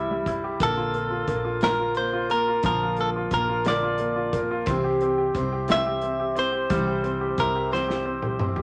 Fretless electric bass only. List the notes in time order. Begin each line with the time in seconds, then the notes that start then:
Already playing: C2
0.60 A#1
1.28 A#1
2.64 A#1
3.31 A#1
4.67 C2
5.35 C2
6.70 C2
7.38 C2